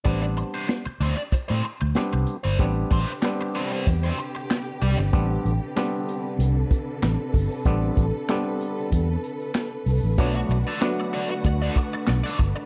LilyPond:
<<
  \new Staff \with { instrumentName = "Overdriven electric guitar" } { \time 4/4 \key a \dorian \tempo 4 = 95 <d' g' c''>16 r8 <d' g' c''>16 r8 <d' g' c''>16 r8 <d' g' c''>16 r4 r16 <d' g' c''>16 | r8 <d' g' c''>16 r8. <d' g' c''>16 <d' g' c''>16 r16 <d' g' c''>16 r4 <d' g' d''>16 r16 | r1 | r1 |
<fis' a' d''>16 r8 <fis' a' d''>16 r8 <fis' a' d''>16 r8 <fis' a' d''>16 r8. <fis' a' d''>16 r8 | }
  \new Staff \with { instrumentName = "String section" } { \time 4/4 \key a \dorian << { r1 | g'1~ | g'2 a'2~ | a'1 |
fis'1 | } \\ { r1 | <c d b'>1~ | <c d b'>1~ | <c d b'>1 |
<d a>1 | } >> }
  \new Staff \with { instrumentName = "Clav" } { \time 4/4 \key a \dorian <g b c' d'>4~ <g b c' d'>16 r4. r16 <g b c' d'>8 r8 | <g b c' d'>8 r8 <g b c' d'>4~ <g b c' d'>16 r4. r16 | <g b c' d'>8 r8 <g b c' d'>4~ <g b c' d'>16 r4. r16 | <g b c' d'>8 r8 <g b c' d'>4~ <g b c' d'>16 r4. r16 |
<fis a b d'>8 r8 <fis a b d'>4~ <fis a b d'>16 r4. r16 | }
  \new Staff \with { instrumentName = "Fingered electric bass" } { \clef bass \time 4/4 \key a \dorian a,,8. r8. d,16 r8 a,16 r16 d,16 r16 c,16 r16 g,,16 | a,,8 a,,16 r4 r16 e,8 r4 c,16 g,,16 | a,,8 a,,16 r4 r16 c,8 r8 a,,16 r16 g,,16 r16 | a,,8 a,,16 r4 r16 e,8 r4 c,16 a,,16 |
b,,8 b,,16 r4 r16 d,8 r8 b,,16 r16 g,,16 r16 | }
  \new DrumStaff \with { instrumentName = "Drums" } \drummode { \time 4/4 <hh bd>8 hh8 <hh sn>8 hh8 <hh bd>8 hh8 <hh sn>8 hh8 | <hh bd>8 <hh bd>8 <hc hh sn>8 hh16 hh16 <hh bd>8 hh16 hh16 <hc hh sn>8 hho8 | <hh bd>8 hh8 <hc hh sn>8 hh8 hh8 <hh bd>8 <hc hh sn>8 <hho bd>8 | <hh bd>8 <hh bd>8 <hc hh sn>8 hh16 hh16 <hh bd>8 hh16 hh16 <hc hh sn>8 hho8 |
<hh bd>8 hh8 <hc hh sn>8 hh16 hh16 <hh bd>8 <hh bd>8 <hc hh sn>8 <hh bd>8 | }
>>